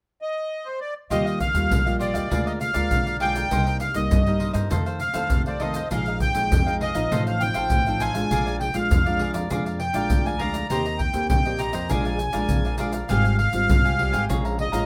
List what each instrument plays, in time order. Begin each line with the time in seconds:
0.22 accordion D#5
0.66 accordion C5
0.81 accordion D5
1.10 upright bass D#2, nylon-string guitar D#3 G3 A#3 F4, cavaquinho F4 G4 D#5 F5, accordion D#5, pandeiro, shaker, surdo
1.26 cavaquinho G4 D#5 F5, pandeiro, shaker
1.40 accordion F5, muted cavaquinho stroke, pandeiro, shaker, surdo
1.54 upright bass D#2, nylon-string guitar G3 A#3 F4, pandeiro, shaker
1.70 upright bass A#1, nylon-string guitar A#2, pandeiro, shaker, surdo
1.86 nylon-string guitar G3 A#3 F4, cavaquinho G4 D#5 F5, pandeiro, shaker
1.99 cavaquinho F4 G4 D#5 F5, accordion D5, pandeiro, shaker
2.14 upright bass D#2, cavaquinho G4 D#5 F5, pandeiro, shaker
2.30 upright bass D2, nylon-string guitar D3 G#3 A#3 F4, cavaquinho G#4 A#4 D5 F5, pandeiro, shaker, surdo
2.46 cavaquinho A#4 D5 F5, accordion D#5, pandeiro, shaker
2.60 accordion F5, muted cavaquinho stroke, pandeiro, shaker
2.74 upright bass D2, nylon-string guitar G#3 A#3 F4, cavaquinho A#4 D5 F5, pandeiro, shaker
2.91 upright bass B1, nylon-string guitar D3, pandeiro, shaker, surdo
3.06 cavaquinho A#4 D5 F5, pandeiro, shaker
3.20 nylon-string guitar G#3 A#3 F4, cavaquinho G#4 A#4 D5 F5, accordion G5, pandeiro
3.35 cavaquinho A#4 D5 F5, pandeiro, shaker
3.51 upright bass C2, nylon-string guitar C3 G3 A#3 D#4, cavaquinho D#4 A#4 C5 D#5, pandeiro, shaker, surdo
3.66 cavaquinho A#4 C5 D#5, pandeiro, shaker
3.80 accordion F5, muted cavaquinho stroke, pandeiro, shaker
3.94 upright bass C2, nylon-string guitar G3 A#3 D#4, accordion D#5, pandeiro, shaker
4.11 nylon-string guitar G2, upright bass G2, pandeiro, shaker, surdo
4.26 nylon-string guitar G3 A#3 D#4, cavaquinho A#4 C5 D#5, pandeiro, shaker
4.39 cavaquinho D#4 A#4 C5 D#5, pandeiro
4.53 upright bass G2, cavaquinho A#4 C5 D#5, pandeiro, shaker
4.70 upright bass F2, nylon-string guitar F2 D#3 A3 C4, cavaquinho D#4 A4 C5 F5, pandeiro, shaker, surdo
4.86 cavaquinho A4 C5 F5, pandeiro, shaker
5.00 accordion F5, muted cavaquinho stroke, pandeiro, shaker
5.14 upright bass F2, nylon-string guitar D#3 A3 C4, cavaquinho A4 C5 F5, pandeiro, shaker
5.30 upright bass F2, nylon-string guitar C3, pandeiro, shaker, surdo
5.46 cavaquinho A4 C5 F5, accordion D5, pandeiro, shaker
5.60 nylon-string guitar D#3 A3 C4, cavaquinho D#4 A4 C5 F5, accordion D#5, pandeiro
5.74 cavaquinho A4 C5 F5, pandeiro, shaker
5.91 upright bass A#1, nylon-string guitar A#2 F3 G#3 D#4, cavaquinho G#4 A#4 D#5 F5, accordion F5, pandeiro, shaker, surdo
6.06 cavaquinho A#4 D#5 F5, pandeiro, shaker
6.20 accordion G5, muted cavaquinho stroke, pandeiro, shaker, surdo
6.35 upright bass A#1, nylon-string guitar F3 G#3 D#4, pandeiro, shaker
6.52 upright bass F2, nylon-string guitar F2, pandeiro, shaker, surdo
6.66 nylon-string guitar F3 G#3 D#4, cavaquinho A#4 D#5 F5, pandeiro, shaker
6.80 cavaquinho G#4 A#4 D#5 F5, accordion D#5, pandeiro
6.95 upright bass A#1, nylon-string guitar F3 C4 D#4, cavaquinho A#4 D#5 F5, pandeiro, shaker
7.11 upright bass A1, nylon-string guitar A2, cavaquinho D#4 A4 C5 F5, pandeiro, shaker, surdo
7.27 cavaquinho A4 C5 F5, accordion F5, pandeiro, shaker
7.40 nylon-string guitar F3 C4 D#4, accordion G5, muted cavaquinho stroke, pandeiro, shaker
7.54 upright bass A1, cavaquinho A4 C5 F5, pandeiro, shaker
7.70 upright bass A1, nylon-string guitar A2, pandeiro, shaker, surdo
7.86 nylon-string guitar F3 C4 D#4, cavaquinho A4 C5 F5, pandeiro, shaker
8.00 cavaquinho D#4 A4 C5 F5, accordion G#5, pandeiro, shaker
8.14 nylon-string guitar G#3 D4 F4, cavaquinho A4 C5 F5, pandeiro, shaker
8.31 upright bass A#1, nylon-string guitar A#2, cavaquinho G#4 A#4 D5 F5, pandeiro, shaker, surdo
8.46 cavaquinho A#4 D5 F5, pandeiro, shaker
8.60 accordion G5, muted cavaquinho stroke, pandeiro
8.74 upright bass A#1, nylon-string guitar G#3 D4 F4, accordion F5, pandeiro, shaker
8.91 upright bass F2, nylon-string guitar F3, pandeiro, shaker, surdo
9.06 nylon-string guitar G#3 D4 F4, cavaquinho A#4 D5 F5, pandeiro, shaker
9.19 cavaquinho G#4 A#4 D5 F5, pandeiro
9.34 upright bass F2, cavaquinho A#4 D5 F5, pandeiro, shaker
9.50 upright bass F2, nylon-string guitar A#2 G#3 D4 F4, cavaquinho G#4 A#4 D5 F5, pandeiro, shaker, surdo
9.65 cavaquinho A#4 D5 F5, pandeiro, shaker
9.79 accordion G5, muted cavaquinho stroke, pandeiro
9.94 upright bass A#1, nylon-string guitar G#3 D4 F4, cavaquinho A#4 D5 F5, pandeiro, shaker
10.10 upright bass D2, nylon-string guitar F3, pandeiro, shaker, surdo
10.25 cavaquinho A#4 D5 F5, accordion G#5, pandeiro, shaker
10.39 nylon-string guitar G#3 D4 F4, cavaquinho G#4 A#4 D5 F5, accordion A#5, pandeiro
10.54 cavaquinho A#4 D5 F5, pandeiro, shaker
10.69 upright bass D#2, nylon-string guitar D#3 A#3 C4 G4, cavaquinho D#4 G4 C5 D#5, accordion A#5, pandeiro, shaker, surdo
10.86 cavaquinho G4 C5 D#5, pandeiro, shaker
10.99 accordion G5, muted cavaquinho stroke, pandeiro, surdo
11.14 upright bass D#2, nylon-string guitar A#3 C4 G4, pandeiro, shaker
11.29 upright bass A#1, nylon-string guitar A#2, accordion G5, pandeiro, shaker, surdo
11.45 nylon-string guitar A#3 C4 G4, cavaquinho G4 C5 D#5, pandeiro, shaker
11.59 cavaquinho D#4 G4 C5 D#5, accordion A#5, pandeiro, shaker
11.73 upright bass F2, cavaquinho G4 C5 D#5, pandeiro, shaker
11.89 upright bass A#1, nylon-string guitar A#2 G#3 D4 F4, cavaquinho G#4 A#4 D5 F5, accordion G#5, pandeiro, shaker, surdo
12.05 cavaquinho A#4 D5 F5, pandeiro, shaker
12.19 muted cavaquinho stroke, pandeiro, shaker
12.33 upright bass A#1, nylon-string guitar G#3 D4 F4, cavaquinho A#4 D5 F5, pandeiro, shaker
12.49 upright bass A#1, nylon-string guitar F3, pandeiro, shaker, surdo
12.65 cavaquinho A#4 D5 F5, pandeiro, shaker
12.78 nylon-string guitar G#3 D4 F4, cavaquinho G#4 A#4 D5 F5, pandeiro, shaker
12.92 cavaquinho A#4 D5 F5, pandeiro, shaker
13.08 upright bass G#1, nylon-string guitar G#2 G3 C4 F4, cavaquinho G4 G#4 F5 G#5, accordion F5, pandeiro, shaker, surdo
13.24 cavaquinho G4 F5 G#5, pandeiro, shaker
13.38 accordion F5, muted cavaquinho stroke, pandeiro
13.53 upright bass G#1, nylon-string guitar G3 C4 F4, pandeiro, shaker
13.69 upright bass C2, nylon-string guitar G#2, pandeiro, shaker, surdo
13.84 cavaquinho G4 F5 G#5, pandeiro, shaker
13.98 nylon-string guitar G3 C4 F4, cavaquinho G4 G#4 F5 G#5, pandeiro
14.12 upright bass G#1, cavaquinho G4 F5 G#5, pandeiro, shaker
14.29 upright bass A#1, nylon-string guitar A#2 G#3 C#4 F4, cavaquinho G#4 C#5 F5 A#5, pandeiro, shaker, surdo
14.44 cavaquinho C#5 F5 A#5, pandeiro, shaker
14.58 accordion D#5, muted cavaquinho stroke, pandeiro
14.72 upright bass A#1, nylon-string guitar G#3 C#4 F4, cavaquinho C#5 F5 A#5, pandeiro, shaker